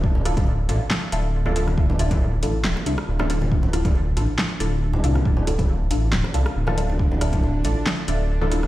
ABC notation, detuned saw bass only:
X:1
M:4/4
L:1/16
Q:"Swing 16ths" 1/4=138
K:Dm
V:1 name="Detuned saw bass" clef=bass
D,,,6 A,,, z3 D,,,3 D,,, D,,,2 | D,,,6 A,,,2 D,,, z C,, z D,,,4- | D,,,6 A,,, z3 D,,,4 C,,2 | D,,,6 A,,,2 D,,, z C,, z D,,,4- |
D,,,6 A,,, z3 D,,,3 D,,, D,,,2 |]